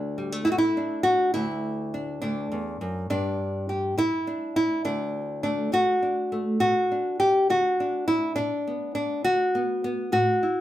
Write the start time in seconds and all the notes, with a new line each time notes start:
Already playing: D2 D4
0.18 G3
0.32 A3
0.45 E4, muted nylon-string guitar stroke
0.52 F#4
0.58 E4
0.77 D4
1.03 F#4
1.34 D2 E4
1.94 D4
2.22 D2 D4
2.52 E2
2.81 F#2
3.10 G2 D4
3.69 G4
3.98 E4, muted nylon-string guitar stroke
4.27 D4
4.56 E4
4.85 D2 D4
5.43 A3 D4
5.72 F#4, muted nylon-string guitar stroke
6.02 D4
6.32 A3
6.60 B2 F#4
6.92 D4
7.20 G4
7.50 D3 F#4
7.80 D4
8.08 E4
8.36 B2 D4
8.67 B3
8.95 D4
9.24 D3 F#4
9.55 B3
9.84 B3
10.12 A2 F#4
10.43 E4